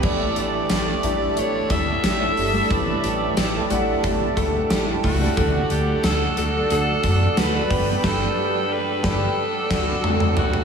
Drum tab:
CC |x---------------|----------------|----------------|x---------x-----|
HH |--x-x-x-x-x-x-o-|x-x-x-x-x-x-x-o-|x-x-x-x-x-x-x-o-|----------------|
TB |----x-------x---|----x-------x---|----x-------x---|----------------|
SD |----o-------o---|----o-------o---|----o-------o---|o-----o---o-----|
T2 |----------------|----------------|----------------|------------oo--|
FT |----------------|----------------|----------------|--------------oo|
BD |o---------o-----|o-------o-o---o-|o---------o---o-|o-----o---o-----|